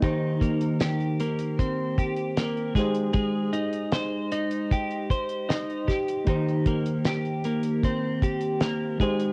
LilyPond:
<<
  \new Staff \with { instrumentName = "Reed electric piano" } { \time 4/4 \key ees \major \tempo 4 = 77 <bes ees' g' c''>2.~ <bes ees' g' c''>8 <aes ees' g' c''>8~ | <aes ees' g' c''>2.~ <aes ees' g' c''>8 r8 | <bes ees' g' c''>2.~ <bes ees' g' c''>8 <aes ees' g' c''>8 | }
  \new Staff \with { instrumentName = "Clean electric guitar" } { \time 4/4 \key ees \major ees8 bes8 g'8 bes8 c'8 g'8 bes8 aes8 | aes8 ees'8 c''8 ees'8 g'8 c''8 ees'8 g'8 | ees8 bes8 g'8 bes8 c'8 g'8 bes8 aes8 | }
  \new DrumStaff \with { instrumentName = "Drums" } \drummode { \time 4/4 <hh bd>8 <hh bd>16 hh16 <hh sn>16 hh16 hh16 hh16 <hh bd>8 <hh bd>16 hh16 <hh sn>16 hh16 <hh bd sn>16 hh16 | <hh bd>8 hh16 hh16 <hh sn>8 hh16 hh16 <hh bd>16 hh16 <hh bd>16 hh16 <hh sn>16 hh16 <hh bd sn>16 hh16 | <hh bd>16 hh16 <hh bd>16 hh16 <hh sn>16 hh16 hh16 hh16 <hh bd>8 <hh bd>16 hh16 <hh sn>8 <hh bd>16 hh16 | }
>>